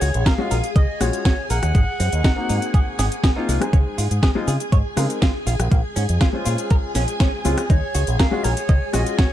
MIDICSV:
0, 0, Header, 1, 7, 480
1, 0, Start_track
1, 0, Tempo, 495868
1, 1694, Time_signature, 4, 2, 24, 8
1, 9030, End_track
2, 0, Start_track
2, 0, Title_t, "Flute"
2, 0, Program_c, 0, 73
2, 0, Note_on_c, 0, 73, 97
2, 259, Note_on_c, 0, 77, 106
2, 273, Note_off_c, 0, 73, 0
2, 728, Note_off_c, 0, 77, 0
2, 734, Note_on_c, 0, 75, 99
2, 976, Note_on_c, 0, 73, 103
2, 991, Note_off_c, 0, 75, 0
2, 1447, Note_off_c, 0, 73, 0
2, 1453, Note_on_c, 0, 78, 118
2, 3335, Note_off_c, 0, 78, 0
2, 7451, Note_on_c, 0, 73, 98
2, 7899, Note_off_c, 0, 73, 0
2, 7930, Note_on_c, 0, 77, 100
2, 8169, Note_on_c, 0, 73, 103
2, 8183, Note_off_c, 0, 77, 0
2, 8641, Note_on_c, 0, 75, 98
2, 8656, Note_off_c, 0, 73, 0
2, 8882, Note_on_c, 0, 73, 102
2, 8896, Note_off_c, 0, 75, 0
2, 9030, Note_off_c, 0, 73, 0
2, 9030, End_track
3, 0, Start_track
3, 0, Title_t, "String machine"
3, 0, Program_c, 1, 50
3, 0, Note_on_c, 1, 68, 87
3, 0, Note_on_c, 1, 80, 88
3, 3599, Note_off_c, 1, 68, 0
3, 3601, Note_off_c, 1, 80, 0
3, 3611, Note_on_c, 1, 68, 90
3, 3612, Note_on_c, 1, 80, 87
3, 9030, Note_off_c, 1, 68, 0
3, 9030, Note_off_c, 1, 80, 0
3, 9030, End_track
4, 0, Start_track
4, 0, Title_t, "Clean electric guitar"
4, 0, Program_c, 2, 27
4, 12, Note_on_c, 2, 66, 77
4, 75, Note_off_c, 2, 66, 0
4, 251, Note_on_c, 2, 70, 108
4, 314, Note_off_c, 2, 70, 0
4, 493, Note_on_c, 2, 70, 81
4, 555, Note_off_c, 2, 70, 0
4, 734, Note_on_c, 2, 75, 86
4, 771, Note_off_c, 2, 75, 0
4, 977, Note_on_c, 2, 66, 73
4, 1037, Note_off_c, 2, 66, 0
4, 1216, Note_on_c, 2, 66, 85
4, 1307, Note_off_c, 2, 66, 0
4, 1456, Note_on_c, 2, 70, 76
4, 1517, Note_off_c, 2, 70, 0
4, 1695, Note_on_c, 2, 56, 82
4, 1731, Note_off_c, 2, 56, 0
4, 1934, Note_on_c, 2, 60, 74
4, 1995, Note_off_c, 2, 60, 0
4, 2174, Note_on_c, 2, 63, 102
4, 2235, Note_off_c, 2, 63, 0
4, 2415, Note_on_c, 2, 63, 76
4, 2476, Note_off_c, 2, 63, 0
4, 2657, Note_on_c, 2, 68, 80
4, 2692, Note_off_c, 2, 68, 0
4, 2893, Note_on_c, 2, 68, 103
4, 2955, Note_off_c, 2, 68, 0
4, 3133, Note_on_c, 2, 68, 79
4, 3195, Note_off_c, 2, 68, 0
4, 3257, Note_on_c, 2, 63, 78
4, 3315, Note_off_c, 2, 63, 0
4, 3373, Note_on_c, 2, 56, 80
4, 3435, Note_off_c, 2, 56, 0
4, 3612, Note_on_c, 2, 61, 84
4, 3650, Note_off_c, 2, 61, 0
4, 3852, Note_on_c, 2, 65, 77
4, 3915, Note_off_c, 2, 65, 0
4, 4091, Note_on_c, 2, 68, 100
4, 4154, Note_off_c, 2, 68, 0
4, 4333, Note_on_c, 2, 68, 76
4, 4395, Note_off_c, 2, 68, 0
4, 4571, Note_on_c, 2, 73, 84
4, 4610, Note_off_c, 2, 73, 0
4, 4811, Note_on_c, 2, 65, 73
4, 4874, Note_off_c, 2, 65, 0
4, 5049, Note_on_c, 2, 65, 80
4, 5144, Note_off_c, 2, 65, 0
4, 5292, Note_on_c, 2, 65, 81
4, 5354, Note_off_c, 2, 65, 0
4, 5531, Note_on_c, 2, 58, 83
4, 5570, Note_off_c, 2, 58, 0
4, 5770, Note_on_c, 2, 61, 79
4, 5834, Note_off_c, 2, 61, 0
4, 6010, Note_on_c, 2, 65, 102
4, 6074, Note_off_c, 2, 65, 0
4, 6248, Note_on_c, 2, 65, 77
4, 6313, Note_off_c, 2, 65, 0
4, 6492, Note_on_c, 2, 70, 80
4, 6530, Note_off_c, 2, 70, 0
4, 6734, Note_on_c, 2, 61, 79
4, 6795, Note_off_c, 2, 61, 0
4, 6976, Note_on_c, 2, 61, 82
4, 7067, Note_off_c, 2, 61, 0
4, 7214, Note_on_c, 2, 65, 80
4, 7276, Note_off_c, 2, 65, 0
4, 7456, Note_on_c, 2, 63, 83
4, 7492, Note_off_c, 2, 63, 0
4, 7692, Note_on_c, 2, 66, 75
4, 7755, Note_off_c, 2, 66, 0
4, 7931, Note_on_c, 2, 70, 104
4, 7994, Note_off_c, 2, 70, 0
4, 8173, Note_on_c, 2, 70, 80
4, 8235, Note_off_c, 2, 70, 0
4, 8411, Note_on_c, 2, 75, 85
4, 8450, Note_off_c, 2, 75, 0
4, 8654, Note_on_c, 2, 66, 78
4, 8715, Note_off_c, 2, 66, 0
4, 8892, Note_on_c, 2, 66, 83
4, 8985, Note_off_c, 2, 66, 0
4, 9030, End_track
5, 0, Start_track
5, 0, Title_t, "Grand piano"
5, 0, Program_c, 3, 0
5, 370, Note_on_c, 3, 56, 95
5, 372, Note_on_c, 3, 61, 86
5, 378, Note_on_c, 3, 65, 90
5, 381, Note_on_c, 3, 66, 107
5, 497, Note_off_c, 3, 56, 0
5, 497, Note_off_c, 3, 61, 0
5, 501, Note_off_c, 3, 65, 0
5, 502, Note_off_c, 3, 66, 0
5, 972, Note_on_c, 3, 56, 79
5, 977, Note_on_c, 3, 61, 69
5, 979, Note_on_c, 3, 65, 74
5, 982, Note_on_c, 3, 66, 87
5, 1176, Note_off_c, 3, 56, 0
5, 1178, Note_off_c, 3, 61, 0
5, 1179, Note_off_c, 3, 65, 0
5, 1181, Note_off_c, 3, 66, 0
5, 2284, Note_on_c, 3, 58, 78
5, 2290, Note_on_c, 3, 60, 75
5, 2296, Note_on_c, 3, 63, 74
5, 2302, Note_on_c, 3, 66, 85
5, 3226, Note_off_c, 3, 58, 0
5, 3229, Note_off_c, 3, 60, 0
5, 3232, Note_off_c, 3, 63, 0
5, 3235, Note_off_c, 3, 66, 0
5, 3254, Note_on_c, 3, 58, 89
5, 3258, Note_on_c, 3, 60, 80
5, 3260, Note_on_c, 3, 63, 77
5, 3263, Note_on_c, 3, 65, 96
5, 3466, Note_off_c, 3, 58, 0
5, 3468, Note_off_c, 3, 60, 0
5, 3469, Note_off_c, 3, 63, 0
5, 3471, Note_off_c, 3, 65, 0
5, 3488, Note_on_c, 3, 56, 73
5, 3495, Note_on_c, 3, 72, 71
5, 3500, Note_on_c, 3, 63, 71
5, 3507, Note_on_c, 3, 68, 88
5, 4183, Note_off_c, 3, 56, 0
5, 4187, Note_off_c, 3, 72, 0
5, 4189, Note_off_c, 3, 63, 0
5, 4193, Note_off_c, 3, 68, 0
5, 4212, Note_on_c, 3, 56, 100
5, 4214, Note_on_c, 3, 60, 91
5, 4217, Note_on_c, 3, 63, 90
5, 4222, Note_on_c, 3, 65, 104
5, 4338, Note_off_c, 3, 56, 0
5, 4338, Note_off_c, 3, 60, 0
5, 4340, Note_off_c, 3, 63, 0
5, 4342, Note_off_c, 3, 65, 0
5, 4805, Note_on_c, 3, 56, 74
5, 4809, Note_on_c, 3, 60, 70
5, 4810, Note_on_c, 3, 63, 68
5, 4815, Note_on_c, 3, 70, 87
5, 5012, Note_off_c, 3, 56, 0
5, 5014, Note_off_c, 3, 60, 0
5, 5015, Note_off_c, 3, 63, 0
5, 5017, Note_off_c, 3, 70, 0
5, 6125, Note_on_c, 3, 56, 76
5, 6131, Note_on_c, 3, 72, 70
5, 6137, Note_on_c, 3, 61, 71
5, 6143, Note_on_c, 3, 65, 85
5, 7180, Note_off_c, 3, 56, 0
5, 7183, Note_off_c, 3, 72, 0
5, 7186, Note_off_c, 3, 61, 0
5, 7189, Note_off_c, 3, 65, 0
5, 7209, Note_on_c, 3, 56, 81
5, 7209, Note_on_c, 3, 60, 74
5, 7214, Note_on_c, 3, 61, 72
5, 7218, Note_on_c, 3, 65, 89
5, 7341, Note_off_c, 3, 56, 0
5, 7341, Note_off_c, 3, 60, 0
5, 7343, Note_off_c, 3, 61, 0
5, 7345, Note_off_c, 3, 65, 0
5, 8046, Note_on_c, 3, 56, 97
5, 8050, Note_on_c, 3, 61, 91
5, 8052, Note_on_c, 3, 65, 85
5, 8058, Note_on_c, 3, 66, 111
5, 8174, Note_off_c, 3, 56, 0
5, 8176, Note_off_c, 3, 61, 0
5, 8177, Note_off_c, 3, 65, 0
5, 8180, Note_off_c, 3, 66, 0
5, 8645, Note_on_c, 3, 56, 77
5, 8650, Note_on_c, 3, 61, 75
5, 8653, Note_on_c, 3, 65, 72
5, 8655, Note_on_c, 3, 66, 84
5, 8852, Note_off_c, 3, 56, 0
5, 8855, Note_off_c, 3, 61, 0
5, 8856, Note_off_c, 3, 65, 0
5, 8857, Note_off_c, 3, 66, 0
5, 9030, End_track
6, 0, Start_track
6, 0, Title_t, "Fingered electric bass"
6, 0, Program_c, 4, 33
6, 15, Note_on_c, 4, 37, 105
6, 97, Note_off_c, 4, 37, 0
6, 142, Note_on_c, 4, 34, 91
6, 217, Note_off_c, 4, 34, 0
6, 498, Note_on_c, 4, 34, 105
6, 578, Note_off_c, 4, 34, 0
6, 735, Note_on_c, 4, 37, 98
6, 817, Note_off_c, 4, 37, 0
6, 976, Note_on_c, 4, 34, 92
6, 1057, Note_off_c, 4, 34, 0
6, 1454, Note_on_c, 4, 34, 92
6, 1537, Note_off_c, 4, 34, 0
6, 1579, Note_on_c, 4, 39, 95
6, 1656, Note_off_c, 4, 39, 0
6, 1694, Note_on_c, 4, 32, 96
6, 1776, Note_off_c, 4, 32, 0
6, 1936, Note_on_c, 4, 42, 101
6, 2018, Note_off_c, 4, 42, 0
6, 2060, Note_on_c, 4, 39, 91
6, 2136, Note_off_c, 4, 39, 0
6, 2418, Note_on_c, 4, 44, 99
6, 2499, Note_off_c, 4, 44, 0
6, 2893, Note_on_c, 4, 32, 86
6, 2976, Note_off_c, 4, 32, 0
6, 3374, Note_on_c, 4, 36, 80
6, 3457, Note_off_c, 4, 36, 0
6, 3614, Note_on_c, 4, 37, 95
6, 3696, Note_off_c, 4, 37, 0
6, 3855, Note_on_c, 4, 44, 103
6, 3937, Note_off_c, 4, 44, 0
6, 3979, Note_on_c, 4, 44, 94
6, 4056, Note_off_c, 4, 44, 0
6, 4332, Note_on_c, 4, 49, 106
6, 4415, Note_off_c, 4, 49, 0
6, 4573, Note_on_c, 4, 44, 95
6, 4656, Note_off_c, 4, 44, 0
6, 4810, Note_on_c, 4, 49, 93
6, 4894, Note_off_c, 4, 49, 0
6, 5293, Note_on_c, 4, 34, 96
6, 5376, Note_off_c, 4, 34, 0
6, 5416, Note_on_c, 4, 34, 98
6, 5495, Note_off_c, 4, 34, 0
6, 5534, Note_on_c, 4, 34, 94
6, 5616, Note_off_c, 4, 34, 0
6, 5774, Note_on_c, 4, 44, 103
6, 5856, Note_off_c, 4, 44, 0
6, 5899, Note_on_c, 4, 41, 96
6, 5976, Note_off_c, 4, 41, 0
6, 6257, Note_on_c, 4, 46, 102
6, 6338, Note_off_c, 4, 46, 0
6, 6733, Note_on_c, 4, 34, 95
6, 6816, Note_off_c, 4, 34, 0
6, 7215, Note_on_c, 4, 37, 80
6, 7297, Note_off_c, 4, 37, 0
6, 7454, Note_on_c, 4, 39, 104
6, 7537, Note_off_c, 4, 39, 0
6, 7695, Note_on_c, 4, 37, 105
6, 7777, Note_off_c, 4, 37, 0
6, 7820, Note_on_c, 4, 34, 94
6, 7896, Note_off_c, 4, 34, 0
6, 8178, Note_on_c, 4, 34, 105
6, 8258, Note_off_c, 4, 34, 0
6, 8414, Note_on_c, 4, 37, 96
6, 8496, Note_off_c, 4, 37, 0
6, 8656, Note_on_c, 4, 34, 96
6, 8738, Note_off_c, 4, 34, 0
6, 9030, End_track
7, 0, Start_track
7, 0, Title_t, "Drums"
7, 14, Note_on_c, 9, 46, 103
7, 15, Note_on_c, 9, 82, 76
7, 111, Note_off_c, 9, 46, 0
7, 111, Note_off_c, 9, 82, 0
7, 138, Note_on_c, 9, 42, 62
7, 139, Note_on_c, 9, 82, 42
7, 235, Note_off_c, 9, 42, 0
7, 236, Note_off_c, 9, 82, 0
7, 253, Note_on_c, 9, 36, 110
7, 253, Note_on_c, 9, 38, 123
7, 254, Note_on_c, 9, 37, 74
7, 254, Note_on_c, 9, 42, 53
7, 255, Note_on_c, 9, 82, 32
7, 349, Note_off_c, 9, 36, 0
7, 350, Note_off_c, 9, 38, 0
7, 351, Note_off_c, 9, 37, 0
7, 351, Note_off_c, 9, 42, 0
7, 352, Note_off_c, 9, 82, 0
7, 495, Note_on_c, 9, 46, 100
7, 496, Note_on_c, 9, 82, 76
7, 592, Note_off_c, 9, 46, 0
7, 592, Note_off_c, 9, 82, 0
7, 616, Note_on_c, 9, 42, 68
7, 617, Note_on_c, 9, 82, 45
7, 713, Note_off_c, 9, 42, 0
7, 714, Note_off_c, 9, 82, 0
7, 733, Note_on_c, 9, 36, 127
7, 735, Note_on_c, 9, 42, 51
7, 736, Note_on_c, 9, 82, 31
7, 830, Note_off_c, 9, 36, 0
7, 832, Note_off_c, 9, 42, 0
7, 833, Note_off_c, 9, 82, 0
7, 975, Note_on_c, 9, 37, 79
7, 975, Note_on_c, 9, 46, 110
7, 976, Note_on_c, 9, 82, 73
7, 1072, Note_off_c, 9, 37, 0
7, 1072, Note_off_c, 9, 46, 0
7, 1073, Note_off_c, 9, 82, 0
7, 1097, Note_on_c, 9, 42, 64
7, 1098, Note_on_c, 9, 82, 45
7, 1194, Note_off_c, 9, 42, 0
7, 1195, Note_off_c, 9, 82, 0
7, 1212, Note_on_c, 9, 38, 125
7, 1213, Note_on_c, 9, 36, 114
7, 1213, Note_on_c, 9, 42, 52
7, 1214, Note_on_c, 9, 82, 31
7, 1309, Note_off_c, 9, 38, 0
7, 1310, Note_off_c, 9, 36, 0
7, 1310, Note_off_c, 9, 42, 0
7, 1311, Note_off_c, 9, 82, 0
7, 1453, Note_on_c, 9, 46, 95
7, 1453, Note_on_c, 9, 82, 71
7, 1549, Note_off_c, 9, 46, 0
7, 1550, Note_off_c, 9, 82, 0
7, 1575, Note_on_c, 9, 37, 85
7, 1575, Note_on_c, 9, 42, 64
7, 1576, Note_on_c, 9, 82, 46
7, 1672, Note_off_c, 9, 37, 0
7, 1672, Note_off_c, 9, 42, 0
7, 1672, Note_off_c, 9, 82, 0
7, 1692, Note_on_c, 9, 36, 125
7, 1694, Note_on_c, 9, 42, 46
7, 1695, Note_on_c, 9, 82, 33
7, 1789, Note_off_c, 9, 36, 0
7, 1791, Note_off_c, 9, 42, 0
7, 1791, Note_off_c, 9, 82, 0
7, 1935, Note_on_c, 9, 46, 106
7, 1936, Note_on_c, 9, 82, 74
7, 2032, Note_off_c, 9, 46, 0
7, 2033, Note_off_c, 9, 82, 0
7, 2057, Note_on_c, 9, 42, 64
7, 2058, Note_on_c, 9, 82, 43
7, 2154, Note_off_c, 9, 42, 0
7, 2155, Note_off_c, 9, 82, 0
7, 2172, Note_on_c, 9, 36, 111
7, 2173, Note_on_c, 9, 38, 114
7, 2174, Note_on_c, 9, 37, 79
7, 2174, Note_on_c, 9, 42, 52
7, 2175, Note_on_c, 9, 82, 32
7, 2269, Note_off_c, 9, 36, 0
7, 2270, Note_off_c, 9, 38, 0
7, 2271, Note_off_c, 9, 37, 0
7, 2271, Note_off_c, 9, 42, 0
7, 2272, Note_off_c, 9, 82, 0
7, 2414, Note_on_c, 9, 46, 100
7, 2415, Note_on_c, 9, 82, 76
7, 2511, Note_off_c, 9, 46, 0
7, 2512, Note_off_c, 9, 82, 0
7, 2538, Note_on_c, 9, 42, 64
7, 2539, Note_on_c, 9, 82, 46
7, 2635, Note_off_c, 9, 42, 0
7, 2636, Note_off_c, 9, 82, 0
7, 2653, Note_on_c, 9, 36, 123
7, 2655, Note_on_c, 9, 42, 48
7, 2656, Note_on_c, 9, 82, 30
7, 2750, Note_off_c, 9, 36, 0
7, 2752, Note_off_c, 9, 42, 0
7, 2753, Note_off_c, 9, 82, 0
7, 2893, Note_on_c, 9, 38, 64
7, 2894, Note_on_c, 9, 46, 112
7, 2895, Note_on_c, 9, 82, 80
7, 2990, Note_off_c, 9, 38, 0
7, 2991, Note_off_c, 9, 46, 0
7, 2992, Note_off_c, 9, 82, 0
7, 3018, Note_on_c, 9, 42, 66
7, 3019, Note_on_c, 9, 82, 46
7, 3115, Note_off_c, 9, 42, 0
7, 3116, Note_off_c, 9, 82, 0
7, 3133, Note_on_c, 9, 36, 110
7, 3135, Note_on_c, 9, 38, 117
7, 3135, Note_on_c, 9, 42, 50
7, 3136, Note_on_c, 9, 82, 31
7, 3229, Note_off_c, 9, 36, 0
7, 3231, Note_off_c, 9, 38, 0
7, 3232, Note_off_c, 9, 42, 0
7, 3233, Note_off_c, 9, 82, 0
7, 3377, Note_on_c, 9, 46, 91
7, 3378, Note_on_c, 9, 82, 74
7, 3473, Note_off_c, 9, 46, 0
7, 3474, Note_off_c, 9, 82, 0
7, 3499, Note_on_c, 9, 37, 88
7, 3499, Note_on_c, 9, 42, 66
7, 3500, Note_on_c, 9, 82, 45
7, 3596, Note_off_c, 9, 37, 0
7, 3596, Note_off_c, 9, 42, 0
7, 3597, Note_off_c, 9, 82, 0
7, 3613, Note_on_c, 9, 36, 116
7, 3617, Note_on_c, 9, 42, 48
7, 3618, Note_on_c, 9, 82, 35
7, 3709, Note_off_c, 9, 36, 0
7, 3714, Note_off_c, 9, 42, 0
7, 3715, Note_off_c, 9, 82, 0
7, 3856, Note_on_c, 9, 46, 105
7, 3857, Note_on_c, 9, 82, 78
7, 3953, Note_off_c, 9, 46, 0
7, 3954, Note_off_c, 9, 82, 0
7, 3979, Note_on_c, 9, 42, 63
7, 3980, Note_on_c, 9, 82, 44
7, 4076, Note_off_c, 9, 42, 0
7, 4077, Note_off_c, 9, 82, 0
7, 4092, Note_on_c, 9, 36, 107
7, 4094, Note_on_c, 9, 37, 85
7, 4094, Note_on_c, 9, 38, 117
7, 4094, Note_on_c, 9, 42, 50
7, 4095, Note_on_c, 9, 82, 34
7, 4189, Note_off_c, 9, 36, 0
7, 4190, Note_off_c, 9, 38, 0
7, 4191, Note_off_c, 9, 37, 0
7, 4191, Note_off_c, 9, 42, 0
7, 4192, Note_off_c, 9, 82, 0
7, 4334, Note_on_c, 9, 46, 89
7, 4334, Note_on_c, 9, 82, 81
7, 4430, Note_off_c, 9, 46, 0
7, 4431, Note_off_c, 9, 82, 0
7, 4456, Note_on_c, 9, 42, 64
7, 4457, Note_on_c, 9, 82, 46
7, 4553, Note_off_c, 9, 42, 0
7, 4554, Note_off_c, 9, 82, 0
7, 4573, Note_on_c, 9, 36, 122
7, 4573, Note_on_c, 9, 42, 49
7, 4574, Note_on_c, 9, 82, 32
7, 4669, Note_off_c, 9, 36, 0
7, 4670, Note_off_c, 9, 42, 0
7, 4670, Note_off_c, 9, 82, 0
7, 4812, Note_on_c, 9, 37, 86
7, 4812, Note_on_c, 9, 46, 106
7, 4813, Note_on_c, 9, 82, 79
7, 4909, Note_off_c, 9, 37, 0
7, 4909, Note_off_c, 9, 46, 0
7, 4909, Note_off_c, 9, 82, 0
7, 4937, Note_on_c, 9, 42, 67
7, 4937, Note_on_c, 9, 82, 47
7, 5033, Note_off_c, 9, 42, 0
7, 5034, Note_off_c, 9, 82, 0
7, 5053, Note_on_c, 9, 36, 103
7, 5053, Note_on_c, 9, 38, 109
7, 5054, Note_on_c, 9, 42, 49
7, 5054, Note_on_c, 9, 82, 34
7, 5150, Note_off_c, 9, 36, 0
7, 5150, Note_off_c, 9, 38, 0
7, 5150, Note_off_c, 9, 42, 0
7, 5151, Note_off_c, 9, 82, 0
7, 5293, Note_on_c, 9, 46, 91
7, 5293, Note_on_c, 9, 82, 76
7, 5389, Note_off_c, 9, 46, 0
7, 5390, Note_off_c, 9, 82, 0
7, 5417, Note_on_c, 9, 37, 91
7, 5417, Note_on_c, 9, 42, 65
7, 5418, Note_on_c, 9, 82, 49
7, 5514, Note_off_c, 9, 37, 0
7, 5514, Note_off_c, 9, 42, 0
7, 5514, Note_off_c, 9, 82, 0
7, 5533, Note_on_c, 9, 36, 116
7, 5533, Note_on_c, 9, 42, 53
7, 5533, Note_on_c, 9, 82, 34
7, 5629, Note_off_c, 9, 36, 0
7, 5629, Note_off_c, 9, 42, 0
7, 5630, Note_off_c, 9, 82, 0
7, 5772, Note_on_c, 9, 46, 99
7, 5773, Note_on_c, 9, 82, 79
7, 5869, Note_off_c, 9, 46, 0
7, 5870, Note_off_c, 9, 82, 0
7, 5894, Note_on_c, 9, 42, 68
7, 5895, Note_on_c, 9, 82, 48
7, 5991, Note_off_c, 9, 42, 0
7, 5991, Note_off_c, 9, 82, 0
7, 6008, Note_on_c, 9, 38, 111
7, 6009, Note_on_c, 9, 37, 77
7, 6009, Note_on_c, 9, 42, 52
7, 6010, Note_on_c, 9, 82, 36
7, 6013, Note_on_c, 9, 36, 101
7, 6105, Note_off_c, 9, 38, 0
7, 6106, Note_off_c, 9, 37, 0
7, 6106, Note_off_c, 9, 42, 0
7, 6107, Note_off_c, 9, 82, 0
7, 6109, Note_off_c, 9, 36, 0
7, 6249, Note_on_c, 9, 46, 89
7, 6250, Note_on_c, 9, 82, 84
7, 6346, Note_off_c, 9, 46, 0
7, 6346, Note_off_c, 9, 82, 0
7, 6373, Note_on_c, 9, 42, 66
7, 6373, Note_on_c, 9, 82, 48
7, 6469, Note_off_c, 9, 42, 0
7, 6470, Note_off_c, 9, 82, 0
7, 6489, Note_on_c, 9, 42, 50
7, 6490, Note_on_c, 9, 82, 34
7, 6493, Note_on_c, 9, 36, 116
7, 6586, Note_off_c, 9, 42, 0
7, 6587, Note_off_c, 9, 82, 0
7, 6590, Note_off_c, 9, 36, 0
7, 6728, Note_on_c, 9, 38, 61
7, 6728, Note_on_c, 9, 46, 102
7, 6729, Note_on_c, 9, 82, 84
7, 6824, Note_off_c, 9, 38, 0
7, 6825, Note_off_c, 9, 46, 0
7, 6826, Note_off_c, 9, 82, 0
7, 6852, Note_on_c, 9, 42, 66
7, 6853, Note_on_c, 9, 82, 48
7, 6949, Note_off_c, 9, 42, 0
7, 6950, Note_off_c, 9, 82, 0
7, 6970, Note_on_c, 9, 38, 110
7, 6971, Note_on_c, 9, 42, 55
7, 6972, Note_on_c, 9, 82, 35
7, 6973, Note_on_c, 9, 36, 106
7, 7067, Note_off_c, 9, 38, 0
7, 7067, Note_off_c, 9, 42, 0
7, 7068, Note_off_c, 9, 82, 0
7, 7069, Note_off_c, 9, 36, 0
7, 7210, Note_on_c, 9, 46, 91
7, 7211, Note_on_c, 9, 82, 80
7, 7307, Note_off_c, 9, 46, 0
7, 7308, Note_off_c, 9, 82, 0
7, 7333, Note_on_c, 9, 37, 95
7, 7333, Note_on_c, 9, 42, 68
7, 7334, Note_on_c, 9, 82, 48
7, 7430, Note_off_c, 9, 37, 0
7, 7430, Note_off_c, 9, 42, 0
7, 7431, Note_off_c, 9, 82, 0
7, 7452, Note_on_c, 9, 36, 118
7, 7452, Note_on_c, 9, 42, 52
7, 7453, Note_on_c, 9, 82, 36
7, 7549, Note_off_c, 9, 36, 0
7, 7549, Note_off_c, 9, 42, 0
7, 7550, Note_off_c, 9, 82, 0
7, 7691, Note_on_c, 9, 46, 100
7, 7692, Note_on_c, 9, 82, 86
7, 7788, Note_off_c, 9, 46, 0
7, 7789, Note_off_c, 9, 82, 0
7, 7814, Note_on_c, 9, 42, 69
7, 7814, Note_on_c, 9, 82, 49
7, 7910, Note_off_c, 9, 42, 0
7, 7911, Note_off_c, 9, 82, 0
7, 7932, Note_on_c, 9, 38, 115
7, 7933, Note_on_c, 9, 36, 98
7, 7933, Note_on_c, 9, 37, 81
7, 7933, Note_on_c, 9, 42, 54
7, 7934, Note_on_c, 9, 82, 35
7, 8029, Note_off_c, 9, 36, 0
7, 8029, Note_off_c, 9, 38, 0
7, 8030, Note_off_c, 9, 37, 0
7, 8030, Note_off_c, 9, 42, 0
7, 8030, Note_off_c, 9, 82, 0
7, 8173, Note_on_c, 9, 46, 89
7, 8174, Note_on_c, 9, 82, 82
7, 8270, Note_off_c, 9, 46, 0
7, 8270, Note_off_c, 9, 82, 0
7, 8295, Note_on_c, 9, 42, 73
7, 8296, Note_on_c, 9, 82, 50
7, 8392, Note_off_c, 9, 42, 0
7, 8392, Note_off_c, 9, 82, 0
7, 8410, Note_on_c, 9, 42, 51
7, 8411, Note_on_c, 9, 82, 35
7, 8412, Note_on_c, 9, 36, 110
7, 8507, Note_off_c, 9, 42, 0
7, 8508, Note_off_c, 9, 82, 0
7, 8509, Note_off_c, 9, 36, 0
7, 8650, Note_on_c, 9, 37, 82
7, 8650, Note_on_c, 9, 46, 102
7, 8650, Note_on_c, 9, 82, 83
7, 8746, Note_off_c, 9, 37, 0
7, 8746, Note_off_c, 9, 46, 0
7, 8747, Note_off_c, 9, 82, 0
7, 8775, Note_on_c, 9, 42, 74
7, 8775, Note_on_c, 9, 82, 47
7, 8871, Note_off_c, 9, 42, 0
7, 8872, Note_off_c, 9, 82, 0
7, 8891, Note_on_c, 9, 38, 113
7, 8892, Note_on_c, 9, 42, 56
7, 8893, Note_on_c, 9, 36, 103
7, 8893, Note_on_c, 9, 82, 35
7, 8988, Note_off_c, 9, 38, 0
7, 8989, Note_off_c, 9, 42, 0
7, 8989, Note_off_c, 9, 82, 0
7, 8990, Note_off_c, 9, 36, 0
7, 9030, End_track
0, 0, End_of_file